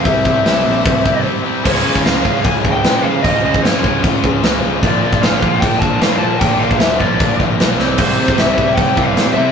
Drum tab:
CC |----------------|x---x---x---x---|x---x---x---x---|x---x---x---x---|
HH |o---o---o-------|----------------|----------------|----------------|
SD |----o-----------|----o-------o---|----o-------o---|----o-------o---|
BD |o-o-----o-o-----|o--o--o-o-o-----|o--o--o-o-o-----|o--o--o-o-o-----|

CC |x---x---x---x---|x---x---x---x---|
HH |----------------|----------------|
SD |----o-------o-o-|----o-------o---|
BD |o--o--o-o-o-----|o--o--o-o-o-----|